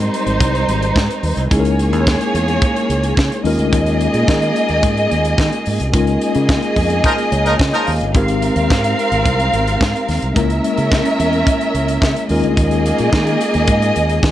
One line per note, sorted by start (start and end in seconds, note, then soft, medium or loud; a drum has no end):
0.00 1.46 G3 medium
0.00 1.47 G#3 medium
0.00 1.47 C4 medium
0.00 1.47 D#4 loud
0.00 1.47 D#4 medium
0.00 1.48 G4 medium
0.00 1.48 A#4 medium
0.00 1.47 C5 loud
0.00 closed hi-hat medium
0.14 closed hi-hat medium
0.26 0.38 G#1 medium
0.26 closed hi-hat soft
0.40 0.63 C2 loud
0.40 kick loud
0.40 closed hi-hat medium
0.55 closed hi-hat soft
0.68 0.91 G#1 medium
0.68 closed hi-hat medium
0.82 closed hi-hat medium
0.96 1.07 G#2 loud
0.96 kick loud
0.96 snare loud
1.11 closed hi-hat soft
1.23 1.35 D#2 loud
1.23 open hi-hat medium
1.37 1.48 C2 medium
1.37 closed hi-hat soft
1.50 1.93 C#2 loud
1.50 3.40 G#3 medium
1.50 3.41 A#3 medium
1.50 3.41 C#4 medium
1.50 3.41 D#4 medium
1.50 3.41 E4 medium
1.50 3.40 G#4 medium
1.50 1.59 G#4 medium
1.50 3.41 C#5 loud
1.50 kick loud
1.50 closed hi-hat medium
1.60 3.45 A#4 medium
1.65 closed hi-hat soft
1.79 closed hi-hat medium
1.93 2.15 D#2 medium
1.93 closed hi-hat soft
2.07 kick loud
2.07 snare loud
2.21 closed hi-hat soft
2.34 2.57 E2 medium
2.34 closed hi-hat medium
2.48 closed hi-hat soft
2.62 kick loud
2.62 closed hi-hat medium
2.76 closed hi-hat soft
2.90 3.12 C#2 medium
2.90 closed hi-hat medium
3.03 closed hi-hat medium
3.17 3.29 C#3 loud
3.17 kick loud
3.17 snare loud
3.32 closed hi-hat soft
3.44 3.56 D#2 loud
3.44 5.61 G#3 medium
3.44 5.89 A#3 loud
3.44 5.62 C#4 medium
3.44 5.62 D#4 medium
3.44 5.62 F4 medium
3.44 5.90 G#4 loud
3.44 5.63 A#4 loud
3.44 5.89 D#5 loud
3.44 open hi-hat medium
3.58 3.70 D2 loud
3.58 closed hi-hat medium
3.73 4.07 D#2 loud
3.73 kick loud
3.73 closed hi-hat medium
3.86 closed hi-hat soft
4.01 closed hi-hat medium
4.14 4.25 A#2 loud
4.14 closed hi-hat soft
4.28 4.50 D#3 loud
4.28 kick loud
4.28 snare loud
4.42 closed hi-hat medium
4.56 closed hi-hat medium
4.69 4.80 D#2 medium
4.69 closed hi-hat soft
4.83 5.06 G#2 loud
4.83 kick loud
4.83 closed hi-hat medium
4.97 closed hi-hat soft
5.11 5.34 D#2 medium
5.11 closed hi-hat medium
5.25 closed hi-hat medium
5.38 5.49 D#3 loud
5.38 kick loud
5.38 snare loud
5.53 closed hi-hat soft
5.66 5.78 G#2 medium
5.66 open hi-hat medium
5.80 5.91 C2 medium
5.80 closed hi-hat soft
5.92 6.16 C#2 loud
5.92 8.10 G#3 medium
5.92 8.11 A#3 medium
5.92 8.11 C#4 medium
5.92 8.11 D#4 medium
5.92 8.11 F4 medium
5.92 8.11 G#4 medium
5.92 8.12 A#4 medium
5.92 8.11 D#5 loud
5.92 kick loud
5.92 closed hi-hat medium
6.07 closed hi-hat soft
6.21 closed hi-hat medium
6.35 6.58 C#3 loud
6.35 closed hi-hat medium
6.49 kick loud
6.49 snare loud
6.63 closed hi-hat medium
6.76 6.99 F2 medium
6.76 kick medium
6.76 open hi-hat medium
6.90 closed hi-hat soft
7.04 7.13 F3 loud
7.04 7.13 D#4 loud
7.04 7.13 A#4 loud
7.04 kick loud
7.04 closed hi-hat medium
7.18 closed hi-hat soft
7.32 7.54 C#2 loud
7.32 7.58 C#5 medium
7.32 closed hi-hat medium
7.46 7.55 F3 medium
7.46 7.55 D#4 medium
7.46 7.54 A#4 medium
7.46 closed hi-hat medium
7.59 7.71 C#3 loud
7.59 7.85 D#5 medium
7.59 kick loud
7.59 snare loud
7.73 7.91 F3 medium
7.73 7.91 D#4 medium
7.73 7.91 A#4 loud
7.73 closed hi-hat soft
7.87 7.99 D#2 medium
7.87 8.13 F5 medium
7.87 open hi-hat medium
8.01 8.15 G1 medium
8.01 closed hi-hat soft
8.14 8.49 G#1 loud
8.14 10.32 G#3 medium
8.14 10.32 C4 medium
8.14 10.32 D#4 medium
8.14 10.33 G4 medium
8.14 10.32 A#4 medium
8.14 10.33 A#4 medium
8.14 10.32 F5 loud
8.14 kick loud
8.14 closed hi-hat medium
8.28 closed hi-hat soft
8.42 closed hi-hat medium
8.56 8.67 D#2 loud
8.56 closed hi-hat medium
8.70 8.93 G#2 loud
8.70 kick loud
8.70 snare loud
8.84 closed hi-hat medium
8.99 closed hi-hat medium
9.12 9.23 G#1 medium
9.12 closed hi-hat soft
9.26 9.48 C2 loud
9.26 kick loud
9.26 closed hi-hat medium
9.40 closed hi-hat soft
9.53 9.76 G#1 medium
9.53 closed hi-hat medium
9.67 closed hi-hat medium
9.81 9.92 G#2 loud
9.81 kick loud
9.81 snare loud
9.96 closed hi-hat soft
10.08 10.20 D#2 medium
10.08 snare soft
10.08 open hi-hat medium
10.22 10.34 C2 medium
10.22 closed hi-hat soft
10.34 10.59 C#2 loud
10.34 12.25 G#3 medium
10.34 12.25 A#3 medium
10.34 12.25 C#4 medium
10.34 12.26 E4 medium
10.34 12.25 A#4 medium
10.34 12.26 A#4 medium
10.34 12.25 E5 loud
10.34 kick loud
10.34 closed hi-hat medium
10.50 closed hi-hat soft
10.64 closed hi-hat medium
10.78 11.00 C#3 medium
10.78 closed hi-hat medium
10.92 kick loud
10.92 snare loud
11.05 closed hi-hat medium
11.20 11.42 E2 medium
11.20 closed hi-hat medium
11.33 closed hi-hat soft
11.47 kick loud
11.47 closed hi-hat medium
11.61 closed hi-hat soft
11.74 11.97 C#2 medium
11.74 closed hi-hat medium
11.88 closed hi-hat medium
12.02 12.13 C#3 loud
12.02 kick loud
12.02 snare loud
12.16 closed hi-hat medium
12.28 12.41 D#2 loud
12.28 14.31 G#3 medium
12.28 14.31 A#3 loud
12.28 14.31 C#4 medium
12.28 14.31 D#4 medium
12.28 14.31 F4 medium
12.28 14.31 G#4 loud
12.28 14.31 A#4 medium
12.28 14.31 D#5 loud
12.28 open hi-hat medium
12.43 12.55 D2 medium
12.43 closed hi-hat medium
12.57 12.91 D#2 loud
12.57 kick loud
12.57 closed hi-hat medium
12.71 closed hi-hat soft
12.86 closed hi-hat medium
12.98 13.11 A#2 medium
12.98 closed hi-hat soft
13.13 13.35 D#3 loud
13.13 kick loud
13.13 snare loud
13.27 closed hi-hat medium
13.41 closed hi-hat medium
13.54 13.66 D#2 medium
13.54 closed hi-hat soft
13.67 13.90 G#2 loud
13.67 kick loud
13.67 closed hi-hat medium
13.82 closed hi-hat soft
13.96 14.18 D#2 loud
13.96 closed hi-hat medium
14.09 closed hi-hat medium
14.23 14.31 D#3 loud
14.23 kick loud
14.23 snare loud